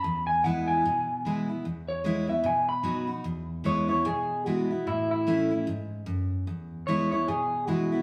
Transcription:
0.00 0.26 B5 loud
0.04 0.81 E2 medium
0.27 0.43 G#5 loud
0.44 0.83 E3 medium
0.44 0.83 G#3 medium
0.44 0.84 B3 loud
0.44 0.84 E4 loud
0.44 0.67 F#5 loud
0.68 1.46 G#5 medium
0.85 1.62 B2 medium
1.25 1.48 E3 medium
1.25 1.49 G#3 medium
1.25 1.49 B3 medium
1.25 1.48 E4 medium
1.49 1.65 B3 soft
1.49 1.65 E4 medium
1.65 2.42 E2 medium
1.88 2.28 C#5 medium
2.04 2.28 E3 medium
2.04 2.28 G#3 loud
2.04 2.28 B3 medium
2.04 2.26 E4 loud
2.27 2.45 B3 soft
2.27 2.44 E4 medium
2.27 2.45 E5 medium
2.44 3.22 B2 loud
2.44 2.68 G#5 medium
2.69 3.24 B5 loud
2.83 3.08 F#3 medium
2.83 3.08 B3 medium
2.83 3.08 D#4 medium
2.83 3.06 F#4 medium
3.07 3.25 D#4 soft
3.07 3.24 F#4 medium
3.24 4.02 E2 medium
3.64 3.88 E3 medium
3.64 3.89 G#3 loud
3.64 3.88 B3 loud
3.64 3.87 E4 loud
3.64 3.88 C#5 medium
3.88 4.06 B3 medium
3.88 4.05 E4 medium
3.88 4.05 C#5 medium
4.05 4.83 B2 loud
4.05 4.47 G#4 medium
4.46 4.69 E3 medium
4.46 4.70 G#3 medium
4.46 4.70 B3 medium
4.46 4.69 E4 medium
4.46 4.86 F#4 loud
4.71 4.87 B3 soft
4.71 4.86 E4 medium
4.87 5.64 A2 medium
4.87 5.10 E4 loud
5.11 5.50 E4 loud
5.27 5.50 E3 medium
5.27 5.50 A3 loud
5.27 5.51 C#4 loud
5.27 5.50 E4 loud
5.51 5.67 C#4 medium
5.51 5.67 E4 medium
5.67 6.06 G#2 medium
6.06 6.46 F#2 medium
6.47 7.25 E2 medium
6.87 7.11 E3 medium
6.87 7.11 G#3 medium
6.87 7.11 B3 loud
6.87 7.11 E4 medium
6.87 7.10 C#5 loud
7.12 7.29 B3 medium
7.12 7.28 E4 medium
7.12 7.28 C#5 medium
7.28 8.02 B2 medium
7.28 7.68 G#4 medium
7.67 7.91 E3 medium
7.67 7.91 G#3 medium
7.67 7.92 B3 medium
7.67 7.91 E4 loud
7.67 8.02 F#4 medium
7.92 8.02 B3 medium
7.92 8.02 E4 medium

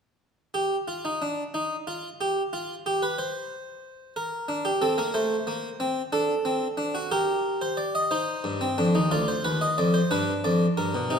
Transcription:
0.54 0.75 G4 medium
0.88 1.04 F4 medium
1.05 1.21 D#4 medium
1.22 1.42 D4 medium
1.54 1.74 D#4 medium
1.87 2.08 F4 medium
2.21 2.41 G4 medium
2.53 2.73 F4 medium
2.86 3.02 G4 medium
3.03 3.18 B4 medium
3.18 4.13 C5 medium
4.16 4.64 A#4 medium
4.48 4.69 D4 medium
4.65 4.81 G4 medium
4.82 4.97 C4 medium
4.82 4.97 A4 medium
4.98 5.14 A#3 medium
4.98 5.14 A#4 medium
5.14 5.34 A3 medium
5.14 6.10 C5 medium
5.47 5.67 A#3 medium
5.80 6.00 C4 medium
6.12 6.33 D4 medium
6.12 7.08 A4 medium
6.45 6.66 C4 medium
6.77 6.94 D4 medium
6.95 7.11 F#4 medium
7.11 8.08 G4 medium
7.11 7.60 A#4 medium
7.62 7.77 C5 medium
7.77 7.94 D5 medium
7.95 8.11 D#5 medium
8.11 8.59 D#4 medium
8.11 9.08 C5 medium
8.44 8.65 G2 medium
8.61 8.77 C4 medium
8.78 8.94 F2 medium
8.78 8.94 D4 medium
8.95 9.11 D#2 medium
8.95 9.10 D#4 medium
9.11 9.32 D2 medium
9.11 10.08 F4 medium
9.11 9.27 D5 medium
9.28 9.44 C5 medium
9.44 9.65 D#2 medium
9.44 9.60 B4 medium
9.61 9.77 D#5 medium
9.78 9.99 F2 medium
9.78 9.94 D5 medium
9.94 10.10 C5 medium
10.11 10.31 G2 medium
10.11 11.08 D4 medium
10.11 10.31 B4 medium
10.44 10.65 F2 medium
10.44 10.65 D5 medium
10.77 10.93 G2 medium
10.77 11.19 A#4 medium
10.95 11.10 B2 medium
11.10 11.19 C3 medium
11.10 11.19 D#4 medium

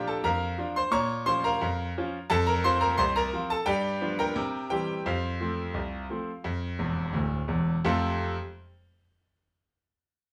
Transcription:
0.00 0.27 A#2 medium
0.00 0.26 F3 medium
0.00 0.27 D4 medium
0.00 0.27 F4 medium
0.00 0.27 G4 medium
0.00 0.25 A#4 medium
0.00 0.26 G5 loud
0.00 0.24 A#5 loud
0.08 0.24 A4 medium
0.08 0.24 A5 medium
0.24 0.53 F2 medium
0.24 0.72 A#4 medium
0.24 0.73 F5 medium
0.24 0.76 A#5 loud
0.58 0.77 F3 medium
0.58 0.78 D4 medium
0.58 0.78 F4 medium
0.76 0.93 C5 medium
0.76 0.93 C6 loud
0.91 1.21 A#2 medium
0.91 1.25 C#5 medium
0.91 1.25 A#5 medium
0.91 1.27 C#6 loud
1.26 1.45 F3 medium
1.26 1.46 C#4 medium
1.26 1.46 F4 medium
1.26 1.43 C5 medium
1.26 1.44 C6 loud
1.44 2.27 A#4 medium
1.44 2.27 F5 medium
1.44 2.30 A#5 loud
1.61 1.91 F2 medium
1.98 2.16 F3 medium
1.98 2.16 C#4 medium
1.98 2.17 F4 medium
2.30 2.59 F2 loud
2.30 2.47 A4 loud
2.30 2.47 A5 loud
2.47 2.64 A#4 medium
2.47 2.64 A#5 loud
2.64 2.83 F3 medium
2.64 2.84 C4 medium
2.64 2.84 F4 medium
2.64 2.81 C5 medium
2.64 2.82 C6 loud
2.81 2.98 A#4 medium
2.81 2.98 A#5 loud
2.98 3.28 C2 medium
2.98 3.15 C5 loud
2.98 3.15 C6 loud
3.16 3.49 A#4 loud
3.16 3.50 A#5 loud
3.33 3.52 F3 medium
3.33 3.52 C4 medium
3.33 3.53 F4 medium
3.50 3.67 A4 medium
3.50 3.68 A5 loud
3.66 3.96 G2 loud
3.66 4.15 G4 medium
3.66 4.15 D5 medium
3.66 4.18 G5 loud
4.01 4.20 F3 medium
4.01 4.21 B3 medium
4.01 4.21 D4 medium
4.19 4.68 A#4 medium
4.19 4.68 G5 medium
4.19 4.71 A#5 loud
4.36 4.66 C3 loud
4.70 4.90 E3 medium
4.70 4.90 G3 medium
4.70 4.90 C4 medium
4.70 5.04 G4 medium
4.70 5.06 G5 loud
5.06 5.36 F2 medium
5.06 7.12 F4 medium
5.06 7.11 C5 medium
5.06 7.15 F5 medium
5.41 5.60 F3 medium
5.41 5.60 A3 soft
5.41 5.61 C4 medium
5.74 6.05 C2 medium
6.10 6.29 F3 soft
6.10 6.30 A3 soft
6.10 6.30 C4 soft
6.44 6.75 F2 medium
6.79 7.06 E1 medium
6.79 7.06 E2 medium
7.13 7.40 D1 medium
7.13 7.40 D2 medium
7.48 7.75 E1 medium
7.48 7.75 E2 medium
7.85 8.23 F2 loud
7.85 8.23 C3 medium
7.85 8.23 A3 medium
7.85 8.24 C4 medium
7.85 8.24 F4 medium
7.85 8.24 A4 medium

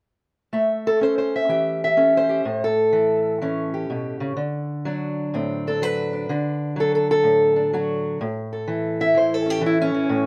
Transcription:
0.53 3.41 A3 medium
0.53 1.35 E5 soft
0.87 1.02 A4 medium
1.01 1.96 C#4 medium
1.01 1.17 C5 medium
1.18 1.34 C5 medium
1.36 1.83 E5 medium
1.49 2.43 E3 medium
1.49 2.28 G4 soft
1.84 2.63 E5 medium
1.97 2.43 C#4 medium
1.97 2.17 A4 soft
2.17 2.63 C5 medium
2.29 2.44 G4 soft
2.45 4.35 A2 medium
2.64 4.39 A4 medium
2.93 3.40 E3 medium
3.42 3.89 E3 medium
3.42 4.36 C#4 soft
3.74 4.36 G4 soft
3.90 4.20 B2 medium
4.20 4.36 C#3 medium
4.37 6.27 D3 medium
4.85 5.81 F#3 medium
4.85 5.65 D4 soft
5.34 6.27 A2 medium
5.34 6.27 C4 soft
5.67 6.12 D4 soft
5.67 5.83 A4 medium
5.82 6.28 F#3 medium
5.82 6.78 B4 medium
6.13 6.27 D4 soft
6.29 8.18 D3 medium
6.29 7.55 D4 soft
6.76 7.72 F#3 medium
6.80 6.94 A4 medium
6.95 7.10 A4 medium
7.11 7.74 A4 medium
7.23 8.18 A2 medium
7.56 8.18 D4 soft
7.73 8.19 F#3 medium
7.73 8.21 F#4 medium
8.21 10.09 A2 medium
8.53 9.17 A4 soft
8.68 9.15 E3 medium
9.00 9.50 E4 soft
9.00 9.16 E5 medium
9.15 9.61 E3 medium
9.15 9.34 C5 medium
9.34 9.96 A4 medium
9.46 9.81 C#4 soft
9.50 9.65 G4 medium
9.61 9.94 E3 medium
9.66 9.81 E4 medium
9.81 10.26 C#4 loud
9.94 10.26 E3 soft
10.09 10.26 A2 medium

